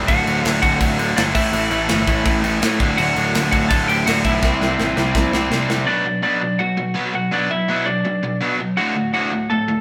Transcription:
0.08 D1 D2 A2 D3 F#4 F#5, kick, crash
0.26 D1 D2 A2 D3, crash
0.44 D1 D2 A2 D3, snare, crash
0.62 D1 D2 A2 D3 F#4 F#5, kick, crash
0.80 D1 D2 A2 D3, kick, crash
0.98 D2 A2 D3, crash
1.16 G1 D2 A2 D3 D4 D5, snare, crash
1.34 A1 A2 E3 A3 E4 E5, kick, crash
1.52 A1 A2 E3 A3, crash
1.71 A1 A2 E3 A3, crash
1.89 G1 A2 E3 A3, snare, crash
2.07 A1 A2 E3 A3, kick, crash
2.24 A1 A2 E3 A3, kick, crash
2.43 A1 A2 E3 A3, crash
2.62 A2 E3 A3, snare, crash
2.80 D1 D2 A2 D3, kick, crash
2.97 D1 D2 A2 D3 F#4 F#5, crash
3.16 D1 D2 A2 D3, crash
3.34 D1 D2 A2 D3, snare, crash
3.51 D1 D2 A2 D3 F#4 F#5, kick, crash
3.69 D1 D2 A2 D3 A4 A5, kick, crash
3.88 D2 A2 D3 G4 G5, crash
4.06 D1 D2 A2 D3 F#4 F#5, snare, crash
4.25 B1 D2 A2 D3 E4 E5, kick, crash
4.43 C2 C3 G3 C4, kick, snare
4.61 C2 C3 G3 C4, snare
4.79 A1 C3 G3 C4, snare
4.96 C2 C3 G3 C4, snare
5.15 C2 C3 G3 C4, kick, snare
5.33 C2 C3 G3 C4, snare
5.51 C2 C3 G3 C4, snare
5.69 C3 G3 C4, snare
5.87 B2 F#3 B3 D4 D5
6.05 B2 F#3
6.23 B2 F#3 B3 D4 D5
6.41 B2 F#3
6.59 B2 F#3 F#4 F#5
6.77 B2 F#3
6.94 B2 F#3 B3
7.13 B2 F#3 F#4 F#5
7.32 B2 F#3 B3 D4 D5
7.51 B2 F#3 E4 E5
7.68 B2 F#3 B3
7.86 B2 F#3 D4 D5
8.05 B2 F#3
8.23 B2 F#3
8.41 B2 F#3 B3
8.60 B2 F#3
8.77 D2 A2 D3 F#4 F#5
8.95 D2 A2
9.14 D2 A2 D3 F#4 F#5
9.33 D2 A2
9.50 D2 A2 A4 A5
9.68 D2 A2

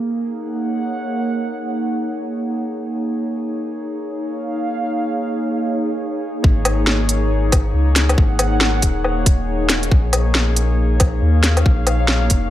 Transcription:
Already playing: A#3 D#4 G#4
0.19 F#5
0.35 C#5
4.12 F5
6.44 G#1 A#3, kick
6.65 closed hi-hat, low woodblock
6.87 snare
7.09 closed hi-hat
7.52 kick, closed hi-hat, low woodblock
7.74 C#2
7.88 F#5
7.96 snare, closed hi-hat
8.09 closed hi-hat, low woodblock
8.18 G#1, kick
8.39 closed hi-hat, low woodblock
8.61 snare
8.82 D#1, kick, closed hi-hat
9.04 low woodblock
9.26 kick, closed hi-hat
9.69 snare, closed hi-hat
9.83 closed hi-hat
9.91 A#1, kick
10.13 closed hi-hat, low woodblock
10.35 snare
10.56 closed hi-hat
11.00 F5, kick, closed hi-hat, low woodblock
11.22 D#2
11.44 snare, closed hi-hat
11.57 closed hi-hat, low woodblock
11.66 A#1, kick
11.87 closed hi-hat, low woodblock
12.08 snare
12.30 F1, kick, closed hi-hat

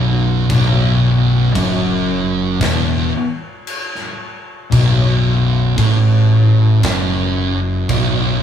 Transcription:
Already playing: B0 B1
0.50 B0 B1, kick, crash
1.54 F#1 F#2, kick, crash
2.60 E1 E2, kick, snare, crash
3.67 crash
3.95 snare
4.71 B0 B1, kick, crash
5.77 A1 A2, kick, crash
6.83 F#1 F#2, kick, snare, crash
7.89 B0 B1, kick, crash

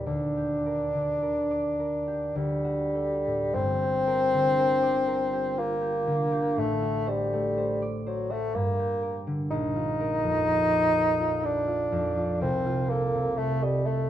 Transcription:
Already playing: D#2 A#2 G4 A#4
0.06 D2 D4
0.37 G4
0.66 A#4
0.95 D3
1.22 A#4
1.51 D5
1.79 A#4
2.07 G4
2.36 D2 G3
2.64 F#4
2.95 A4
3.26 A2
3.53 G1 G2 C4
3.82 G4
4.07 A#4
4.33 D3
4.59 A#4
4.82 D5
5.07 A#4
5.33 G4
5.57 A#3 F4
5.81 G4
6.07 D3
6.32 G4
6.56 A1 A2 A3
6.82 F#4
7.07 G3 C5
7.33 A3
7.58 C5
7.82 D5
8.06 F#3 C5
8.30 A3 F#4
8.55 G2 A#3
8.79 G4
9.03 A#4
9.27 D3
9.51 A#1 D#4
9.76 F4
10.00 A#4
10.23 F2
10.48 A#4
10.71 D5
10.95 A#4
11.20 F4
11.43 D4 D#4
11.67 F4
11.92 F2
12.17 F4
12.41 C2 C4
12.66 F4
12.90 A#3 A4
13.15 C3
13.37 A3 A4
13.63 G3 D#5
13.85 A3 A4

